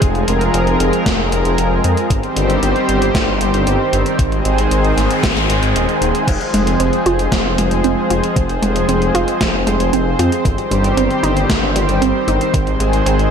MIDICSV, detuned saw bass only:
0, 0, Header, 1, 2, 480
1, 0, Start_track
1, 0, Key_signature, -4, "minor"
1, 0, Tempo, 521739
1, 16, Time_signature, 4, 2, 24, 8
1, 12242, End_track
2, 0, Start_track
2, 0, Title_t, "Detuned saw bass"
2, 0, Program_c, 0, 39
2, 17, Note_on_c, 0, 29, 99
2, 214, Note_off_c, 0, 29, 0
2, 259, Note_on_c, 0, 29, 94
2, 455, Note_off_c, 0, 29, 0
2, 497, Note_on_c, 0, 29, 94
2, 694, Note_off_c, 0, 29, 0
2, 736, Note_on_c, 0, 29, 99
2, 835, Note_off_c, 0, 29, 0
2, 976, Note_on_c, 0, 29, 92
2, 1075, Note_off_c, 0, 29, 0
2, 1097, Note_on_c, 0, 29, 96
2, 1195, Note_off_c, 0, 29, 0
2, 1214, Note_on_c, 0, 29, 95
2, 1314, Note_off_c, 0, 29, 0
2, 1335, Note_on_c, 0, 29, 89
2, 1434, Note_off_c, 0, 29, 0
2, 1455, Note_on_c, 0, 29, 89
2, 1653, Note_off_c, 0, 29, 0
2, 1697, Note_on_c, 0, 41, 82
2, 1795, Note_off_c, 0, 41, 0
2, 1934, Note_on_c, 0, 31, 98
2, 2034, Note_off_c, 0, 31, 0
2, 2176, Note_on_c, 0, 31, 84
2, 2373, Note_off_c, 0, 31, 0
2, 2417, Note_on_c, 0, 31, 98
2, 2515, Note_off_c, 0, 31, 0
2, 2657, Note_on_c, 0, 31, 82
2, 2854, Note_off_c, 0, 31, 0
2, 2895, Note_on_c, 0, 31, 101
2, 2994, Note_off_c, 0, 31, 0
2, 3017, Note_on_c, 0, 31, 100
2, 3115, Note_off_c, 0, 31, 0
2, 3135, Note_on_c, 0, 31, 95
2, 3234, Note_off_c, 0, 31, 0
2, 3256, Note_on_c, 0, 31, 92
2, 3355, Note_off_c, 0, 31, 0
2, 3375, Note_on_c, 0, 31, 100
2, 3474, Note_off_c, 0, 31, 0
2, 3614, Note_on_c, 0, 31, 94
2, 3714, Note_off_c, 0, 31, 0
2, 3854, Note_on_c, 0, 32, 97
2, 4052, Note_off_c, 0, 32, 0
2, 4097, Note_on_c, 0, 32, 96
2, 4294, Note_off_c, 0, 32, 0
2, 4334, Note_on_c, 0, 32, 93
2, 4532, Note_off_c, 0, 32, 0
2, 4574, Note_on_c, 0, 32, 99
2, 4674, Note_off_c, 0, 32, 0
2, 4814, Note_on_c, 0, 32, 100
2, 4913, Note_off_c, 0, 32, 0
2, 4935, Note_on_c, 0, 32, 99
2, 5034, Note_off_c, 0, 32, 0
2, 5056, Note_on_c, 0, 32, 100
2, 5155, Note_off_c, 0, 32, 0
2, 5174, Note_on_c, 0, 32, 98
2, 5274, Note_off_c, 0, 32, 0
2, 5295, Note_on_c, 0, 27, 84
2, 5394, Note_off_c, 0, 27, 0
2, 5534, Note_on_c, 0, 27, 104
2, 5633, Note_off_c, 0, 27, 0
2, 5774, Note_on_c, 0, 29, 98
2, 5874, Note_off_c, 0, 29, 0
2, 6015, Note_on_c, 0, 29, 82
2, 6213, Note_off_c, 0, 29, 0
2, 6254, Note_on_c, 0, 29, 102
2, 6354, Note_off_c, 0, 29, 0
2, 6493, Note_on_c, 0, 29, 84
2, 6692, Note_off_c, 0, 29, 0
2, 6733, Note_on_c, 0, 29, 102
2, 6833, Note_off_c, 0, 29, 0
2, 6854, Note_on_c, 0, 29, 100
2, 6954, Note_off_c, 0, 29, 0
2, 6974, Note_on_c, 0, 29, 94
2, 7074, Note_off_c, 0, 29, 0
2, 7093, Note_on_c, 0, 29, 89
2, 7193, Note_off_c, 0, 29, 0
2, 7212, Note_on_c, 0, 29, 99
2, 7313, Note_off_c, 0, 29, 0
2, 7453, Note_on_c, 0, 29, 93
2, 7553, Note_off_c, 0, 29, 0
2, 7693, Note_on_c, 0, 29, 98
2, 7892, Note_off_c, 0, 29, 0
2, 7935, Note_on_c, 0, 29, 97
2, 8133, Note_off_c, 0, 29, 0
2, 8175, Note_on_c, 0, 29, 93
2, 8373, Note_off_c, 0, 29, 0
2, 8415, Note_on_c, 0, 29, 98
2, 8514, Note_off_c, 0, 29, 0
2, 8654, Note_on_c, 0, 29, 95
2, 8754, Note_off_c, 0, 29, 0
2, 8776, Note_on_c, 0, 29, 94
2, 8874, Note_off_c, 0, 29, 0
2, 8897, Note_on_c, 0, 29, 96
2, 8995, Note_off_c, 0, 29, 0
2, 9014, Note_on_c, 0, 29, 87
2, 9114, Note_off_c, 0, 29, 0
2, 9134, Note_on_c, 0, 29, 87
2, 9332, Note_off_c, 0, 29, 0
2, 9374, Note_on_c, 0, 41, 81
2, 9474, Note_off_c, 0, 41, 0
2, 9615, Note_on_c, 0, 31, 96
2, 9714, Note_off_c, 0, 31, 0
2, 9855, Note_on_c, 0, 31, 83
2, 10053, Note_off_c, 0, 31, 0
2, 10095, Note_on_c, 0, 31, 100
2, 10194, Note_off_c, 0, 31, 0
2, 10334, Note_on_c, 0, 31, 84
2, 10532, Note_off_c, 0, 31, 0
2, 10576, Note_on_c, 0, 31, 102
2, 10675, Note_off_c, 0, 31, 0
2, 10693, Note_on_c, 0, 31, 101
2, 10793, Note_off_c, 0, 31, 0
2, 10812, Note_on_c, 0, 31, 98
2, 10913, Note_off_c, 0, 31, 0
2, 10933, Note_on_c, 0, 31, 91
2, 11033, Note_off_c, 0, 31, 0
2, 11052, Note_on_c, 0, 31, 100
2, 11153, Note_off_c, 0, 31, 0
2, 11293, Note_on_c, 0, 31, 94
2, 11393, Note_off_c, 0, 31, 0
2, 11536, Note_on_c, 0, 32, 97
2, 11733, Note_off_c, 0, 32, 0
2, 11773, Note_on_c, 0, 32, 95
2, 11972, Note_off_c, 0, 32, 0
2, 12015, Note_on_c, 0, 32, 97
2, 12213, Note_off_c, 0, 32, 0
2, 12242, End_track
0, 0, End_of_file